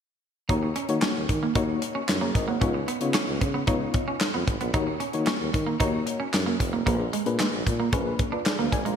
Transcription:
0.49 tuba D#2, fm electric piano A#3 D#4 F#4 C#5, clean electric guitar D#4, kick, closed hi-hat
0.63 muted clean electric guitar stroke
0.76 clean electric guitar C#4, closed hi-hat
0.89 tuba D#3, fm electric piano A#3 D#4 F#4 C#5, closed hi-hat
1.02 clean electric guitar C#4, snare, clap, closed hi-hat
1.16 tuba D#2
1.29 tuba D#3, muted clean electric guitar stroke, kick, closed hi-hat
1.43 clean electric guitar A#3
1.55 tuba D#2, fm electric piano A#3 D#4 F#4 C#5, clean electric guitar D#4, kick, closed hi-hat
1.82 muted clean electric guitar stroke, closed hi-hat
1.95 clean electric guitar C#4
2.09 tuba F#2, snare, clap, closed hi-hat
2.21 clean electric guitar A#3, fm electric piano G#4 C#5
2.35 tuba G#1, fm electric piano A#4 D#5, muted clean electric guitar stroke, kick, closed hi-hat
2.48 clean electric guitar A#3, fm electric piano C#5 F#5
2.61 tuba C#2, fm electric piano B3 D#4 F4 C#5, clean electric guitar C#4, kick, closed hi-hat
2.74 muted clean electric guitar stroke
2.88 clean electric guitar B3, closed hi-hat
3.01 tuba C#3, fm electric piano B3 D#4 F4 C#5, closed hi-hat
3.14 clean electric guitar C#4, snare, clap, closed hi-hat
3.28 tuba C#2
3.41 tuba C#3, muted clean electric guitar stroke, kick, closed hi-hat
3.54 clean electric guitar B3
3.67 tuba C#2, fm electric piano B3 D#4 F4 C#5, clean electric guitar D#4, kick, closed hi-hat
3.94 muted clean electric guitar stroke, kick, closed hi-hat
4.08 clean electric guitar C#4
4.21 snare, clap, closed hi-hat
4.34 tuba F2, clean electric guitar B3
4.48 tuba G#1, muted clean electric guitar stroke, kick, closed hi-hat
4.61 tuba A#1, clean electric guitar B3, closed hi-hat
4.74 tuba D#2, fm electric piano A#3 D#4 F#4 C#5, clean electric guitar D#4, kick, closed hi-hat
4.87 muted clean electric guitar stroke
5.00 clean electric guitar C#4, closed hi-hat
5.13 tuba D#3, fm electric piano A#3 D#4 F#4 C#5, closed hi-hat
5.27 clean electric guitar C#4, snare, clap, closed hi-hat
5.41 tuba D#2
5.54 tuba D#3, muted clean electric guitar stroke, kick, closed hi-hat
5.67 clean electric guitar A#3
5.80 tuba D#2, fm electric piano A#3 D#4 F#4 C#5, clean electric guitar D#4, kick, closed hi-hat
6.06 muted clean electric guitar stroke, closed hi-hat
6.20 clean electric guitar C#4
6.33 tuba F#2, snare, clap, closed hi-hat
6.46 clean electric guitar A#3
6.60 tuba F1, muted clean electric guitar stroke, kick, closed hi-hat
6.73 clean electric guitar A#3
6.86 tuba A#1, clean electric guitar A#3, fm electric piano A#3 D4 G#4 B4, kick, closed hi-hat
7.00 muted clean electric guitar stroke
7.13 clean electric guitar G#3, closed hi-hat
7.26 tuba A#2, fm electric piano A#3 D4 G#4 B4, closed hi-hat
7.40 clean electric guitar G#3, snare, clap, closed hi-hat
7.53 tuba A#1
7.66 tuba A#2, muted clean electric guitar stroke, kick, closed hi-hat
7.80 clean electric guitar A#3
7.93 tuba A#1, fm electric piano A#3 D4 G#4 B4, clean electric guitar C#4, kick, closed hi-hat
8.19 muted clean electric guitar stroke, kick, closed hi-hat
8.32 clean electric guitar D4, fm electric piano F4 B4
8.46 fm electric piano G#4 D5, snare, clap, closed hi-hat
8.59 tuba D2, clean electric guitar A#3, fm electric piano B4 F5
8.72 tuba G#1, fm electric piano D5 G#5, muted clean electric guitar stroke, kick, closed hi-hat
8.85 tuba A#1, clean electric guitar G#3, fm electric piano F5 A#5, closed hi-hat

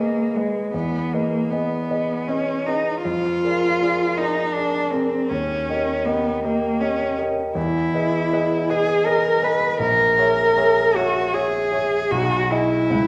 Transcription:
Already playing: grand piano G#1 G#4 B4 D#5, cello A#3
0.35 cello G#3, grand piano G#4 B4 D#5
0.74 grand piano E2, cello B3
1.13 cello A#3, grand piano G#4 B4 D#5
1.51 cello B3, grand piano G#4 B4 D#5
1.90 grand piano G#4 B4 D#5
2.28 cello C#4, grand piano G#4 B4 D#5
2.67 cello D#4, grand piano G#4 B4 D#5
3.03 grand piano F2, cello F4
3.44 grand piano G#4 A#4 D5
3.82 grand piano G#4 A#4 D5
4.18 cello D#4, grand piano G#4 A#4 D5
4.53 cello D4, grand piano G#4 A#4 D5
4.91 cello C4, grand piano G#4 A#4 D5
5.29 grand piano D#2, cello C#4
5.69 grand piano G4 A#4 D#5
6.05 cello B3, grand piano G4 A#4 D#5
6.44 cello A#3, grand piano G4 A#4 D#5
6.80 cello C#4, grand piano G4 A#4 D#5
7.18 grand piano G4 A#4 D#5
7.55 grand piano E2, cello E4
7.94 grand piano G#4 B4 D#5
8.32 grand piano G#4 B4 D#5
8.69 grand piano G#4 B4 D#5, cello G#4
9.06 grand piano G#4 B4 D#5, cello A#4
9.42 grand piano G#4 B4 D#5, cello B4
9.79 grand piano A#1, cello A#4
10.18 grand piano G#4 C#5 E5
10.57 grand piano G#4 C#5 E5
10.96 cello F#4, grand piano G#4 C#5 E5
11.34 grand piano G#4 C#5 E5, cello G#4
11.72 grand piano G#4 C#5 E5
12.11 grand piano B1, cello F#4
12.51 cello E4, grand piano G#4 D#5 G#5
12.90 grand piano C#2

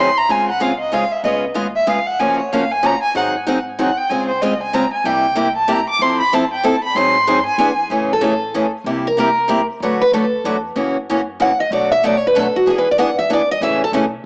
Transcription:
Already playing: upright bass G#1
0.00 violin C6
0.17 violin A#5
0.29 upright bass C#2, steel-string acoustic guitar C#3 G#3 C4 F4 G#4, violin G#5
0.49 violin F#5
0.60 steel-string acoustic guitar C#3 G#3 C4 F4 G#4, violin F5
0.79 violin D#5
0.92 steel-string acoustic guitar C#3 G#3 C4 F4 G#4, violin F5
1.11 violin E5
1.23 upright bass C#2, steel-string acoustic guitar C#3 G#3 B3 F4 G#4, violin D#5
1.54 upright bass D#2, steel-string acoustic guitar C#3 G#3 B3 F4 G#4
1.76 violin E5
1.87 upright bass F2, steel-string acoustic guitar C#3 G#3 B3 F4 G#4, violin F5
2.07 violin F#5
2.19 upright bass F#2, steel-string acoustic guitar C#3 F3 A#3 C#4 F#4, violin G#5
2.40 violin C#5
2.52 steel-string acoustic guitar C#3 F3 A#3 C#4 F#4, violin F5
2.71 violin G#5
2.83 steel-string acoustic guitar C#3 F3 A#3 C#4 F#4, violin A#5
3.02 violin G#5
3.15 upright bass G#2, steel-string acoustic guitar D#3 F#3 C4 D#4 G#4, violin F#5
3.46 steel-string acoustic guitar D#3 F#3 C4 D#4 G#4
3.79 steel-string acoustic guitar D#3 F#3 C4 D#4 G#4, violin F#5
3.97 violin G5
4.09 upright bass C#2, steel-string acoustic guitar C#3 G#3 C4 F4 G#4, violin G#5
4.28 violin C5
4.42 steel-string acoustic guitar C#3 G#3 C4 F4 G#4, violin D#5
4.63 violin G#5
4.73 steel-string acoustic guitar C#3 G#3 C4 F4 G#4, violin A#5
4.94 violin G#5
5.04 upright bass C2, steel-string acoustic guitar C3 G3 A#3 E4 G4, violin G5
5.35 steel-string acoustic guitar C3 G3 A#3 E4 G4
5.57 violin A5
5.68 steel-string acoustic guitar C3 G3 A#3 E4 G4, violin A#5
5.90 violin D6
5.99 upright bass F2, steel-string acoustic guitar F3 C4 E4 A4, violin C6
6.20 violin B5
6.33 steel-string acoustic guitar F3 C4 E4 A4, violin A5
6.53 violin G5
6.64 steel-string acoustic guitar F3 C4 E4 A4, violin A5
6.84 violin B5
6.95 upright bass G#2, steel-string acoustic guitar D#3 F#3 C4 D#4 G#4, violin C6
7.27 steel-string acoustic guitar D#3 F#3 C4 D#4 G#4
7.46 violin G#5
7.58 upright bass E2, steel-string acoustic guitar E3 B3 D4 G#4
7.90 upright bass A1, steel-string acoustic guitar C#3 E3 A3 C#4 G#4
8.13 steel-string acoustic guitar A4
8.21 steel-string acoustic guitar C#3 E3 A3 C#4 G#4 A4
8.54 steel-string acoustic guitar C#3 E3 A3 C#4 G#4
8.84 upright bass C2, steel-string acoustic guitar C3 G3 A#3 E4 G4
9.07 steel-string acoustic guitar A#4
9.17 steel-string acoustic guitar C3 G3 A#3 E4 G4 A#4
9.48 steel-string acoustic guitar C3 G3 A#3 E4 G4
9.80 upright bass D2, steel-string acoustic guitar D3 F#3 A3 D4 F#4 B4
10.02 steel-string acoustic guitar B4
10.12 upright bass D2, steel-string acoustic guitar D3 F#3 A3 D4 F#4 A4 B4
10.44 upright bass E2, steel-string acoustic guitar D3 F#3 A3 D4 F#4 B4
10.76 upright bass F#2, steel-string acoustic guitar C#3 E3 A#3 C#4 F#4
11.10 steel-string acoustic guitar C#3 E3 A#3 C#4 F#4
11.40 steel-string acoustic guitar C#3 E3 A#3 C#4 F#4 F#5
11.60 steel-string acoustic guitar D#5
11.71 upright bass B1, steel-string acoustic guitar B2 F#3 A3 D4 F#4 D5
11.92 steel-string acoustic guitar E5
12.03 steel-string acoustic guitar B2 F#3 A3 D4 F#4 D5
12.17 steel-string acoustic guitar C#5
12.27 steel-string acoustic guitar B4
12.35 steel-string acoustic guitar B2 F#3 A3 D4 F#4 A4
12.56 steel-string acoustic guitar F#4
12.66 upright bass E2, steel-string acoustic guitar E3 B3 D4 G#4
12.78 steel-string acoustic guitar B4
12.91 steel-string acoustic guitar D5
12.98 steel-string acoustic guitar E3 B3 D4 G#4 F#5
13.19 steel-string acoustic guitar E5
13.30 steel-string acoustic guitar E3 B3 D4 G#4 D5
13.51 steel-string acoustic guitar D#5
13.61 upright bass A1, steel-string acoustic guitar C#3 E3 A3 C#4 G#4 E5
13.84 steel-string acoustic guitar A4
13.92 upright bass B1, steel-string acoustic guitar C#3 E3 A3 C#4 G#4

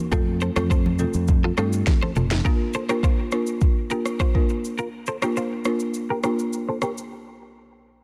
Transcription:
0.12 fingered electric bass F2, marimba A3 C4 F4 A4, clean electric guitar F4 A4, kick, low conga, shaker
0.41 clean electric guitar A4 C5, shaker
0.56 fingered electric bass F2, marimba A3 C4 F4 A4, clean electric guitar F4 A4, cross-stick, high conga, shaker
0.70 clean electric guitar A4 C5, kick, shaker
0.86 high conga
0.99 marimba A3 C4 F4 A4, low conga, shaker
1.14 fingered electric bass F2, shaker
1.28 kick, low conga, shaker
1.44 clean electric guitar F4 A4
1.57 fingered electric bass G2, marimba A3 C4 F4 A4, clean electric guitar F4 A4, cross-stick, shaker
1.73 shaker
1.87 kick, snare, high conga, shaker
2.02 clean electric guitar A4 C5, high conga
2.16 fingered electric bass F1, clean electric guitar F4 A4, mid tom, low conga, shaker
2.31 snare, high conga, shaker
2.45 marimba A#3 D4 F4 A#4, clean electric guitar F4 A#4, kick, shaker
2.74 clean electric guitar A4 C5, shaker
2.89 marimba A#3 D4 F4 A#4, clean electric guitar G4 A#4, cross-stick, shaker
3.03 clean electric guitar F4 C5, kick, shaker
3.32 marimba A#3 D4 F4 A#4, cross-stick, shaker
3.47 shaker
3.61 kick, shaker
3.90 marimba A#3 D4 F4 A#4, clean electric guitar G4 A#4, shaker
4.06 cross-stick, shaker
4.20 clean electric guitar F4 C5, kick, cross-stick, shaker
4.35 marimba A#3 D4 F4 A#4, kick
4.49 shaker
4.65 shaker
4.78 clean electric guitar F4 A#4, shaker
5.07 clean electric guitar A4 C5, shaker
5.22 marimba A#3 D4 F4 A#4, clean electric guitar G4 A#4, cross-stick, shaker
5.37 clean electric guitar F4 C5, shaker
5.65 marimba A#3 D4 F4 A#4, cross-stick, shaker
5.80 shaker
5.94 shaker
6.10 clean electric guitar G4 A#4
6.23 marimba A#3 D4 F4 A#4, clean electric guitar G4 A#4, cross-stick, shaker
6.39 shaker
6.53 shaker
6.69 clean electric guitar A4 C5
6.82 clean electric guitar G4 A#4, cross-stick, shaker
6.98 shaker

